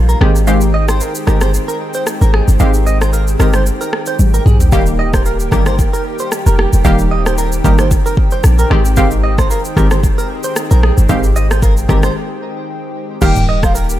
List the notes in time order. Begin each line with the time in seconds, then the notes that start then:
Already playing: A#1 D#3 G3 A#3 F4
0.09 A#4, shaker
0.21 G#1 D#3 G#3 C4 G4 G#4, cross-stick
0.36 shaker
0.47 D#3 G#3 C4 G4 F5, shaker
0.61 shaker
0.74 D#5
0.89 C5, cross-stick, shaker
1.01 A#4, shaker
1.15 shaker
1.27 G1 D#3 G#3 C4 G4 A#4, cross-stick, shaker
1.41 C5, cross-stick, shaker
1.54 shaker
1.68 A#4, shaker
1.94 C5, shaker
2.07 cross-stick, shaker
2.21 G#1 A#4, shaker
2.34 G#4, cross-stick
2.48 G1, shaker
2.60 G#1 D#3 G#3 C4 G4 F5, shaker
2.74 shaker
2.87 D#5, shaker
3.01 C5, cross-stick, shaker
3.13 A#4, shaker
3.28 shaker
3.39 G1 D#3 G#3 C4 G4 A#4, cross-stick, shaker
3.53 C5, cross-stick, shaker
3.66 shaker
3.81 A#4, shaker
3.93 cross-stick
4.06 C5, shaker
4.19 G#1, high tom, shaker
4.34 A#4, shaker
4.46 A#1 G#4, mid tom, shaker
4.60 floor tom, shaker
4.72 D#1 D#3 G3 A#3 G4 F5, kick, shaker
4.86 shaker
4.99 D#5
5.13 C5, kick, cross-stick, shaker
5.26 A#4, shaker
5.40 shaker
5.52 G1 D#3 G3 A#3 G4 A#4, kick, cross-stick, shaker
5.66 C5, cross-stick, shaker
5.79 kick, shaker
5.93 A#4, shaker
6.19 C5, shaker
6.32 cross-stick, shaker
6.46 F1 A#4, shaker
6.58 G4, cross-stick
6.73 F1, shaker
6.85 D#1 D#3 G3 A#3 C4 G4 F5, kick, shaker
6.99 shaker
7.11 D#5
7.26 C5, cross-stick, shaker
7.38 A#4, shaker
7.52 shaker
7.64 G1 D#3 G3 A#3 G4 A#4, kick, shaker
7.78 C5, cross-stick, shaker
7.91 kick, shaker
8.06 A#4, shaker
8.17 kick
8.31 C5, shaker
8.44 A#1, cross-stick, shaker
8.59 A#4, shaker
8.70 G#1 D#3 G#3 C4 G4 G#4, cross-stick
8.85 shaker
8.97 D#3 G#3 C4 G4 F5, kick, shaker
9.11 shaker
9.24 D#5
9.38 C5, kick, cross-stick, shaker
9.50 A#4, shaker
9.65 shaker
9.76 G1 D#3 G#3 C4 G4 A#4, kick, cross-stick, shaker
9.91 C5, cross-stick, shaker
10.03 kick, shaker
10.18 A#4, shaker
10.43 C5, shaker
10.56 cross-stick, shaker
10.71 A#1 A#4, shaker
10.83 G#4, cross-stick
10.98 G1, shaker
11.09 G#1 D#3 G#3 C4 G4 F5, kick, shaker
11.23 shaker
11.36 D#5, shaker
11.51 C5, cross-stick, shaker
11.62 A#4, kick, shaker
11.77 shaker
11.89 G1 D#3 G#3 C4 G4 A#4, kick, cross-stick, shaker
12.03 C5, cross-stick, shaker
13.21 D#1 D#3 G3 A#3 G4 F5 G5, kick, crash, shaker
13.36 mid tom, shaker
13.49 D#5
13.63 C5 F5, kick, cross-stick, shaker
13.75 A#4, shaker
13.90 shaker